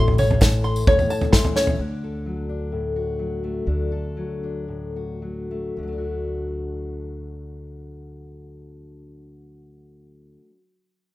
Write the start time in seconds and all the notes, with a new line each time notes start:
Already playing: A1 A2 E4 C6
0.08 floor tom
0.18 A4 C#5, mid tom, tambourine
0.30 floor tom, tambourine
0.41 E3 A5, kick, snare, floor tom, tambourine
0.52 tambourine
0.64 C6, tambourine
0.76 tambourine
0.87 E2 A2 C#5, kick, floor tom
0.99 floor tom, tambourine
1.10 A5, tambourine
1.21 floor tom, tambourine
1.32 E3 E4 C6, kick, snare, tambourine
1.45 floor tom
1.56 C#4 C#5, snare, tambourine
1.67 floor tom, tambourine
1.79 D2 D3 D4
2.04 A4
2.26 F#3
2.49 D4
2.72 A2
2.96 F#4
3.19 F#3
3.44 A3
3.66 D2 D3 D4
3.92 A4
4.17 F#3
4.43 D4
4.68 A2
4.96 F#4
5.22 F#3
5.51 A3
5.77 D2 D3
5.83 F#3
5.88 A3
5.93 D4
5.98 F#4